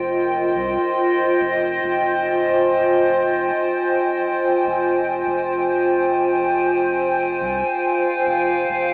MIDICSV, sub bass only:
0, 0, Header, 1, 2, 480
1, 0, Start_track
1, 0, Key_signature, -4, "minor"
1, 0, Tempo, 857143
1, 1023, Time_signature, 4, 2, 24, 8
1, 5004, End_track
2, 0, Start_track
2, 0, Title_t, "Sub bass"
2, 0, Program_c, 0, 38
2, 0, Note_on_c, 0, 29, 100
2, 302, Note_on_c, 0, 36, 83
2, 310, Note_off_c, 0, 29, 0
2, 429, Note_off_c, 0, 36, 0
2, 783, Note_on_c, 0, 29, 81
2, 1000, Note_off_c, 0, 29, 0
2, 1024, Note_on_c, 0, 29, 99
2, 1965, Note_off_c, 0, 29, 0
2, 2608, Note_on_c, 0, 29, 85
2, 2925, Note_off_c, 0, 29, 0
2, 2944, Note_on_c, 0, 29, 103
2, 4144, Note_on_c, 0, 36, 85
2, 4152, Note_off_c, 0, 29, 0
2, 4270, Note_off_c, 0, 36, 0
2, 4625, Note_on_c, 0, 29, 78
2, 4841, Note_off_c, 0, 29, 0
2, 4865, Note_on_c, 0, 29, 102
2, 5004, Note_off_c, 0, 29, 0
2, 5004, End_track
0, 0, End_of_file